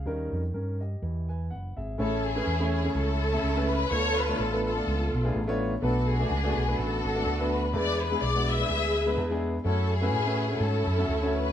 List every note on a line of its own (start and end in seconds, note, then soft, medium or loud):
0.00 0.31 G#4 soft
0.00 0.30 F5 medium
0.06 0.28 D#2 medium
0.06 0.77 D#3 medium
0.06 0.40 G3 medium
0.06 0.40 C#4 medium
0.06 0.41 D#4 medium
0.06 0.41 A#4 medium
0.32 0.51 F2 medium
0.54 0.95 G2 medium
0.54 0.80 C#4 medium
0.54 0.79 A#4 medium
0.80 1.27 G4 soft
0.80 1.26 D#5 medium
1.02 1.52 E2 medium
1.02 1.73 E3 medium
1.29 1.50 B4 soft
1.29 1.49 G#5 medium
1.50 1.73 F#1 medium
1.50 1.76 F#5 medium
1.77 1.95 G#1 medium
1.77 1.98 G#4 soft
1.77 2.23 E5 medium
1.98 2.40 A1 loud
1.98 2.69 A2 medium
1.98 2.25 A3 medium
1.98 2.25 C#4 medium
1.98 2.24 C#4 medium
1.98 2.26 E4 medium
1.98 2.24 E4 medium
1.98 2.26 G#4 medium
1.98 2.24 A4 medium
1.98 2.26 C#5 medium
2.26 2.94 C#4 medium
2.26 2.94 E4 medium
2.26 2.72 G#4 loud
2.35 2.51 A3 medium
2.35 2.51 C#4 medium
2.35 2.51 E4 medium
2.35 2.52 G#4 medium
2.35 2.52 B4 medium
2.46 2.87 E2 medium
2.60 2.77 A3 medium
2.60 2.77 C#4 medium
2.60 2.77 E4 medium
2.60 2.78 G#4 medium
2.60 2.78 C#5 medium
2.74 2.94 G#4 medium
2.83 3.17 A3 medium
2.83 3.17 C#4 medium
2.83 3.17 E4 medium
2.83 3.18 G#4 medium
2.83 3.18 C#5 medium
2.95 3.36 C#2 loud
2.95 3.87 C#4 medium
2.95 3.87 E4 medium
2.95 3.70 A4 loud
3.32 3.47 A3 medium
3.32 3.48 C#4 medium
3.32 3.48 E4 medium
3.32 3.48 G#4 medium
3.32 3.48 E5 medium
3.43 3.84 C#2 medium
3.56 3.80 A3 medium
3.56 3.80 C#4 medium
3.56 3.81 E4 medium
3.56 3.81 G#4 medium
3.56 3.81 B4 medium
3.69 3.91 B4 loud
3.90 4.32 D2 loud
3.90 4.61 D3 medium
3.90 4.17 A3 medium
3.90 4.17 B3 medium
3.90 4.18 D4 medium
3.90 4.18 F4 medium
3.90 4.64 F4 medium
3.90 4.38 A4 medium
3.90 4.18 B4 medium
3.90 4.17 C#5 loud
4.17 4.39 B4 loud
4.27 4.43 A3 medium
4.27 4.43 B3 medium
4.27 4.43 D4 medium
4.27 4.44 F4 medium
4.27 4.44 C#5 medium
4.39 4.79 A1 medium
4.39 4.64 A4 medium
4.51 4.69 A3 medium
4.51 4.69 B3 medium
4.51 4.69 D4 medium
4.51 4.69 F4 medium
4.51 4.69 B4 medium
4.65 5.57 F4 medium
4.65 5.30 A4 medium
4.75 5.09 A3 medium
4.75 5.09 B3 medium
4.75 5.09 D4 medium
4.75 5.09 F4 medium
4.75 5.10 D5 medium
4.87 5.09 C#2 loud
5.13 5.31 B1 medium
5.23 5.39 A3 medium
5.23 5.39 B3 medium
5.23 5.39 D4 medium
5.23 5.40 F4 medium
5.23 5.40 G#4 medium
5.35 5.75 A1 medium
5.47 5.72 A3 medium
5.47 5.72 B3 medium
5.47 5.72 D4 medium
5.47 5.72 F4 medium
5.47 5.73 C#5 loud
5.82 6.23 B1 loud
5.82 6.53 B2 medium
5.82 6.09 A3 medium
5.82 6.09 B3 medium
5.82 6.09 D4 medium
5.82 6.08 D4 medium
5.82 6.75 F#4 medium
5.82 6.10 F#4 medium
5.82 6.07 A4 medium
5.82 6.10 B4 medium
6.09 6.78 D4 medium
6.09 6.78 G#4 loud
6.19 6.35 A3 medium
6.19 6.35 B3 medium
6.19 6.35 D4 medium
6.19 6.35 F#4 medium
6.19 6.36 D5 medium
6.30 6.53 C#2 medium
6.43 6.60 A3 medium
6.43 6.61 B3 medium
6.43 6.61 D4 medium
6.43 6.61 F#4 medium
6.43 6.61 D5 medium
6.56 6.75 B1 medium
6.67 7.01 A3 medium
6.67 7.01 B3 medium
6.67 7.01 D4 medium
6.67 7.01 F#4 medium
6.67 7.01 B4 medium
6.78 7.01 A1 loud
6.78 7.70 D4 medium
6.78 7.70 F#4 medium
6.78 7.53 A4 loud
7.04 7.23 G#1 loud
7.14 7.30 A3 medium
7.14 7.31 B3 medium
7.14 7.31 D4 medium
7.14 7.31 F#4 medium
7.14 7.31 A4 medium
7.25 7.73 D2 loud
7.39 7.63 A3 medium
7.39 7.64 B3 medium
7.39 7.64 D4 medium
7.39 7.64 F#4 medium
7.39 7.64 B4 medium
7.53 7.73 B4 medium
7.73 8.14 E2 loud
7.73 8.44 E3 medium
7.73 8.00 G#3 medium
7.73 8.00 B3 medium
7.73 8.01 D4 medium
7.73 8.01 E4 medium
7.73 8.48 G#4 medium
7.73 8.01 B4 medium
7.73 8.00 B4 medium
7.73 7.99 D5 loud
8.02 8.22 B4 loud
8.10 8.26 G#3 medium
8.10 8.26 B3 medium
8.10 8.27 D4 medium
8.10 8.27 E4 medium
8.10 8.27 G#4 medium
8.22 8.62 B1 medium
8.22 8.48 D5 loud
8.34 8.52 G#3 medium
8.34 8.52 B3 medium
8.34 8.52 D4 medium
8.34 8.52 E4 medium
8.34 8.52 F#4 medium
8.49 9.40 G#4 medium
8.49 9.40 B4 medium
8.49 9.18 E5 loud
8.58 8.92 G#3 medium
8.58 8.92 B3 medium
8.58 8.92 D4 medium
8.58 8.92 E4 medium
8.58 8.92 D5 medium
8.69 9.17 D2 medium
9.06 9.22 G#3 medium
9.06 9.22 B3 medium
9.06 9.22 D4 medium
9.06 9.22 E4 medium
9.06 9.22 B4 medium
9.17 9.58 E2 medium
9.30 9.54 G#3 medium
9.30 9.55 B3 medium
9.30 9.55 D4 medium
9.30 9.55 E4 medium
9.30 9.55 G#4 loud
9.64 10.13 F#2 medium
9.64 9.91 A3 medium
9.64 9.92 C#4 medium
9.64 9.91 C#4 medium
9.64 9.92 E4 medium
9.64 9.91 E4 medium
9.64 9.92 F#4 medium
9.64 9.90 A4 medium
9.64 9.92 C#5 medium
9.92 10.60 C#4 medium
9.92 10.60 E4 medium
9.92 10.61 G#4 loud
10.01 10.17 A3 medium
10.01 10.17 C#4 medium
10.01 10.18 E4 medium
10.01 10.18 F#4 medium
10.01 10.18 B4 medium
10.13 10.54 A2 medium
10.25 10.43 A3 medium
10.25 10.43 C#4 medium
10.25 10.43 E4 medium
10.25 10.44 F#4 medium
10.25 10.44 B4 medium
10.49 10.83 A3 medium
10.49 10.83 C#4 medium
10.49 10.84 E4 medium
10.49 10.84 F#4 medium
10.49 10.84 C#5 medium
10.60 10.83 G#2 medium
10.60 11.52 C#4 medium
10.60 11.52 E4 medium
10.60 11.35 A4 medium
10.87 11.05 F#2 medium
10.97 11.13 A3 medium
10.97 11.13 C#4 medium
10.97 11.14 E4 medium
10.97 11.14 F#4 medium
10.97 11.14 E5 medium
11.08 11.49 D2 medium
11.22 11.46 A3 medium
11.22 11.46 C#4 medium
11.22 11.47 E4 medium
11.22 11.47 F#4 medium
11.22 11.47 C#5 medium
11.35 11.52 B4 loud